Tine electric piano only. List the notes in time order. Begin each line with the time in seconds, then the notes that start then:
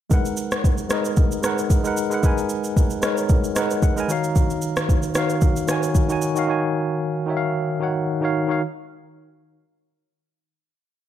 0.10 G#3 D#4 A#4 B4 F#5
0.89 G#3 D#4 A#4 B4 D#5
1.42 G#3 D#4 A#4 B4 F#5
1.84 G#3 D#4 A#4 B4 F#5
2.10 G#3 D#4 A#4 B4 F#5
2.22 G#3 D#4 A#4 B4 G#5
3.02 G#3 D#4 A#4 B4 C#5
3.55 G#3 D#4 A#4 B4 D#5 F#5
3.83 F#5
3.96 G#3 D#4 A#4 B4 G#5 A#5
4.08 D#3 D#4 F#4 C#5 F5
5.14 D#3 D#4 F#4 C#5 F5
5.67 D#3 D#4 F#4 C#5 G#5
6.08 D#3 D#4 F#4 C#5 G#5
6.35 D#3 D#4 F#4 C#5 F5
6.47 D#3 D#4 F#4 C#5 G#5
7.26 D#3 D#4 F#4 C#5 E5
7.37 F5
7.80 D#3 D#4 F#4 C#5 F#5
8.21 D#3 D#4 F#4 C#5 F5
8.47 D#3 D#4 F#4 C#5 F5